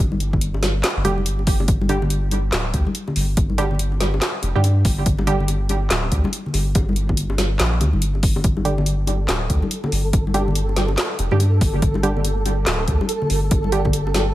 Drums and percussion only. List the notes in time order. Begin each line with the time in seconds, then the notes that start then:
0.12 high conga
0.20 closed hi-hat
0.33 kick, high bongo, low conga
0.41 closed hi-hat
0.54 high bongo
0.62 snare, closed hi-hat, high conga
0.84 snare, clap, closed hi-hat, high bongo
1.04 closed hi-hat, high bongo, low conga
1.18 high conga
1.26 closed hi-hat
1.39 high bongo
1.47 kick, open hi-hat
1.60 high bongo, low conga
1.68 kick, closed hi-hat
1.81 high bongo, high conga
1.89 closed hi-hat
2.02 high bongo, low conga
2.10 closed hi-hat
2.31 closed hi-hat, high bongo, high conga
2.52 snare, clap, closed hi-hat, high bongo
2.74 kick, closed hi-hat
2.87 high bongo, high conga
2.95 closed hi-hat
3.08 high bongo, low conga
3.16 open hi-hat
3.37 kick, closed hi-hat, high bongo
3.49 high conga
3.58 closed hi-hat, high bongo
3.71 low conga
3.79 closed hi-hat
3.92 high bongo
4.00 snare, closed hi-hat, high conga
4.14 high bongo
4.22 snare, clap, closed hi-hat
4.42 closed hi-hat, high bongo
4.56 high conga
4.64 closed hi-hat, high bongo
4.85 kick, open hi-hat
4.98 high bongo, low conga
5.06 kick, closed hi-hat
5.19 high bongo, high conga
5.27 closed hi-hat
5.40 low conga
5.48 closed hi-hat, high bongo
5.69 closed hi-hat, high bongo, high conga
5.90 snare, clap, closed hi-hat
6.04 high bongo
6.12 kick, closed hi-hat
6.24 high bongo, high conga
6.33 closed hi-hat
6.46 low conga
6.54 open hi-hat, high bongo
6.75 kick, closed hi-hat, high bongo
6.89 high conga
6.96 closed hi-hat
7.09 kick, high bongo, low conga
7.17 closed hi-hat
7.30 high bongo
7.38 snare, closed hi-hat, high conga
7.60 snare, clap, closed hi-hat, high bongo
7.81 closed hi-hat, high bongo, low conga
7.93 high conga
8.02 closed hi-hat
8.15 high bongo
8.23 kick, open hi-hat
8.36 high bongo, low conga
8.44 kick, closed hi-hat
8.57 high bongo, high conga
8.65 closed hi-hat
8.78 high bongo, low conga
8.86 closed hi-hat
9.07 closed hi-hat, high bongo, high conga
9.28 snare, clap, closed hi-hat, high bongo
9.50 kick, closed hi-hat
9.62 high bongo, high conga
9.71 closed hi-hat
9.84 high bongo, low conga
9.92 open hi-hat
10.13 kick, closed hi-hat, high bongo
10.27 high conga
10.34 closed hi-hat, high bongo
10.48 low conga
10.55 closed hi-hat
10.69 high bongo
10.77 snare, closed hi-hat, high conga
10.88 high bongo
10.98 snare, clap, closed hi-hat
11.19 closed hi-hat, high bongo
11.31 high conga
11.40 closed hi-hat, high bongo
11.61 kick, open hi-hat
11.73 high bongo, low conga
11.82 kick, closed hi-hat
11.94 high bongo, high conga
12.03 closed hi-hat
12.17 low conga
12.25 closed hi-hat, high bongo
12.46 closed hi-hat, high bongo, high conga
12.67 snare, clap, closed hi-hat
12.79 high bongo
12.88 kick, closed hi-hat
13.01 high bongo, high conga
13.09 closed hi-hat
13.22 low conga
13.30 open hi-hat, high bongo
13.51 kick, closed hi-hat, high bongo
13.64 high conga
13.72 closed hi-hat
13.85 kick, high bongo, low conga
13.93 closed hi-hat
14.07 high bongo
14.14 snare, closed hi-hat, high conga